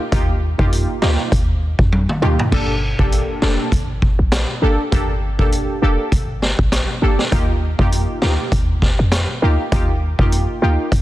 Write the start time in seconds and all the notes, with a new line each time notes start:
0.12 D#2 A#3 D#4 F4 G4, kick, closed hi-hat
0.58 F2 A#3 D#4 F4 G4, kick
0.73 closed hi-hat
1.02 D2 A#3 D#4 F4 G4, snare
1.32 D#2, kick, closed hi-hat
1.79 F2, kick
1.92 high tom
2.09 mid tom
2.22 D2 A#3 D#4 F4 G4, mid tom
2.39 floor tom
2.52 G1 A#3 D4 G4 A4, kick, crash
2.99 A1 A#3 D4 G4 A4, kick
3.12 closed hi-hat
3.42 F1 A#3 D4 G4 A4, snare
3.72 G1, kick, closed hi-hat
4.02 kick
4.19 A#1
4.32 cross-stick, snare, closed hi-hat
4.62 G1 A#3 D4 G4 A4
4.92 G1 A#3 D4 G4 A4, kick, closed hi-hat
5.39 A1 A#3 D4 G4 A4, kick
5.52 closed hi-hat
5.82 F1 A#3 D4 G4 A4
6.12 G1, kick, closed hi-hat
6.42 snare
6.59 A#1, kick
6.72 cross-stick, snare, closed hi-hat
7.02 G1 A#3 D4 G4 A4
7.19 snare
7.32 D#2 A#3 D#4 F4 G4, kick, closed hi-hat
7.79 F2 A#3 D#4 F4 G4, kick
7.92 closed hi-hat
8.22 D2 A#3 D#4 F4 G4, snare
8.52 D#2, kick, closed hi-hat
8.82 kick, snare
8.99 F2
9.12 cross-stick, snare, closed hi-hat
9.42 D2 A#3 D#4 F4 G4
9.72 D#2 A#3 D#4 F4 G4, kick, closed hi-hat
10.19 F2 A#3 D#4 F4 G4, kick
10.32 closed hi-hat
10.62 D2 A#3 D#4 F4 G4
10.92 D#2, kick, closed hi-hat